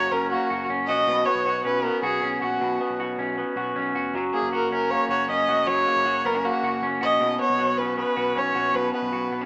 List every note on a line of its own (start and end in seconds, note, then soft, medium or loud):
0.00 3.05 F#3 medium
0.00 0.31 A#3 soft
0.00 0.12 C#4 medium
0.00 0.50 F#4 medium
0.00 0.13 C#5 loud
0.12 0.35 F#1 medium
0.12 0.69 C#4 soft
0.12 0.30 A#4 medium
0.30 1.12 A#3 medium
0.30 0.66 F#4 medium
0.50 0.66 F#1 medium
0.50 0.88 F#4 medium
0.69 0.85 F#1 medium
0.69 1.30 C#4 medium
0.87 1.04 A#1 medium
0.87 1.45 F#4 medium
0.87 1.27 D#5 medium
1.07 1.23 B1 loud
1.07 2.60 B2 medium
1.25 1.83 B3 medium
1.25 1.64 C#5 medium
1.35 1.44 B1 medium
1.45 1.61 B1 medium
1.45 2.03 F#4 medium
1.65 1.88 B1 medium
1.65 2.22 C#4 soft
1.65 1.86 B4 medium
1.84 2.79 B3 medium
1.84 2.03 A#4 medium
2.02 2.19 B1 medium
2.02 2.41 F#4 medium
2.02 2.39 G#4 medium
2.23 2.38 B1 medium
2.23 3.18 C#4 medium
2.42 2.58 A#1 medium
2.42 2.99 F#4 medium
2.42 2.96 F#4 medium
2.61 2.77 B1 medium
2.61 4.15 B2 medium
2.81 3.37 B3 soft
2.90 2.98 B1 medium
3.00 3.15 B1 medium
3.00 3.57 F#4 medium
3.18 3.42 B1 medium
3.18 3.75 C#4 soft
3.38 4.18 B3 medium
3.56 3.72 B1 medium
3.56 3.95 F#4 medium
3.76 3.92 B1 medium
3.76 4.72 C#4 medium
3.95 4.11 F1 medium
3.95 4.52 F#4 medium
4.14 4.30 F#1 medium
4.14 5.67 F#3 medium
4.33 4.90 A#3 soft
4.33 4.52 G#4 medium
4.42 4.51 F#1 medium
4.52 4.68 F#1 medium
4.52 5.10 F#4 medium
4.52 4.71 A#4 medium
4.71 4.95 F#1 medium
4.71 5.29 C#4 soft
4.71 4.92 A#4 medium
4.91 5.86 A#3 medium
4.91 5.10 C#5 medium
5.09 5.25 F#1 medium
5.09 5.48 F#4 medium
5.09 5.28 C#5 medium
5.28 5.45 F#1 medium
5.28 6.25 C#4 medium
5.28 5.68 D#5 medium
5.48 5.64 F1 medium
5.48 6.05 F#4 medium
5.67 5.83 F#1 medium
5.67 9.17 F#3 medium
5.67 6.27 C#5 loud
5.87 6.43 A#3 medium
5.96 6.04 F#1 medium
6.06 6.22 F#1 medium
6.06 6.64 F#4 medium
6.25 6.49 F#1 medium
6.25 6.35 B3 medium
6.25 6.46 A#4 medium
6.35 6.82 C#4 soft
6.44 7.25 A#3 medium
6.44 6.83 F#4 medium
6.63 6.79 F#1 medium
6.63 7.01 F#4 medium
6.82 6.98 F#1 medium
6.82 7.42 C#4 medium
7.01 7.17 A#1 medium
7.01 7.58 F#4 medium
7.01 7.38 D#5 medium
7.21 7.37 B1 loud
7.21 8.73 B2 medium
7.39 7.96 B3 medium
7.39 7.79 C#5 medium
7.50 7.58 B1 medium
7.58 7.75 B1 medium
7.58 8.16 F#4 medium
7.78 8.03 B1 medium
7.78 8.35 C#4 soft
7.78 7.97 B4 medium
7.98 8.93 B3 medium
7.98 8.40 B4 medium
8.17 8.33 B1 medium
8.17 8.54 F#4 medium
8.35 8.52 B1 medium
8.35 9.31 C#4 medium
8.35 8.77 C#5 medium
8.55 8.71 A#1 medium
8.55 9.12 F#4 medium
8.74 8.90 B1 medium
8.74 9.46 B2 medium
8.74 8.93 B4 medium
8.94 9.31 B3 medium
8.94 9.46 B4 medium
9.02 9.11 B1 medium
9.13 9.29 B1 medium
9.13 9.46 F#4 medium
9.31 9.46 B1 medium
9.31 9.41 B3 soft
9.41 9.46 C#4 soft